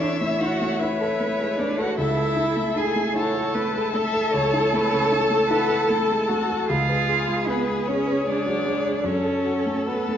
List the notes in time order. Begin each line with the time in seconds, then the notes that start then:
Already playing: E3 G#3 A3 A4 C#5 E5
0.00 D4 E4 D5
0.20 A3 E4 E5
0.40 E4 F#4 F#5
0.61 A3
0.79 E4 B4 C#5 E5
1.01 A4
1.20 A3
1.40 G#3
1.58 A3 D4 D5
1.78 F#4 A4 F#5
1.96 C#2 E4 A4 E5
2.17 A4
2.37 E4
2.56 A3
2.76 E4 G#4 G#5
2.96 A3
3.15 E4 F#4 A4 C#5 A5
3.34 A4
3.54 A3 E4 B4
3.74 G#3
3.94 A3 A4 E5
4.14 A4
4.33 C#2 C#5
4.53 E4
4.73 A3 B4
4.93 C#3
5.12 E4 A4
5.30 A3
5.50 E4 F#4 B4
5.70 A4
5.88 A3 E4 A4
6.10 G#3
6.28 A3 F#4
6.50 A4
6.68 C#2 F4 G#4 F5
6.89 B4
7.09 G#4
7.28 G#3
7.47 B3 G#4 B4
7.68 G#3
7.86 C#4 G#4 C#5
8.07 B4
8.27 G#3 D4 D5
8.46 F#3
8.65 G#3
8.85 G#4
9.04 F#2 C#4 A4 C#5
9.24 A4
9.45 F#4
9.66 A3
9.87 B3 F#4 B4
10.09 A3